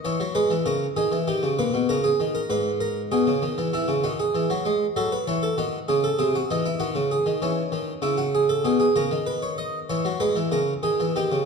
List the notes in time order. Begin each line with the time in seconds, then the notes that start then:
0.05 E3 C#5
0.20 F#3
0.35 G#3 B4
0.50 E3
0.66 C#3 A#4
0.96 D#3 G#4
1.12 E3
1.27 D#3 G4
1.43 C#3
1.59 A#2 B4
1.74 B2
1.89 C#3 A#4
2.04 G#4
2.20 D#3
2.35 A#4
2.50 G#2 B4
2.81 A#4
3.12 B2 G#4
3.27 C#3
3.42 D#3
3.58 E3
3.73 E3 E4
3.88 C#3
4.04 D#3 F#4
4.20 G#4
4.35 E3
4.50 F#3
4.65 G#3
4.96 F#3 A4
5.12 B4
5.27 E3 C#5
5.43 A4
5.58 D#3 F#4
5.88 C#3 G#4
6.04 A4
6.19 C3 G#4
6.35 F#4
6.50 E3 D#4
6.66 E4
6.80 D#3 F#4
6.95 C#3
7.11 G#4
7.26 D#3
7.42 E3 C#4
7.72 D#3
8.02 C#3 E4
8.18 F#4
8.35 G#4
8.49 A4
8.64 B2 G#4
8.80 G#4
8.96 C#3 A#4
9.11 D#3
9.27 B4
9.42 C#5
9.58 D#5
9.89 E3 C#5
10.05 F#3
10.20 G#3 B4
10.36 E3
10.52 C#3 A#4
10.83 D#3 G#4
11.00 E3
11.16 D#3 G4
11.32 C#3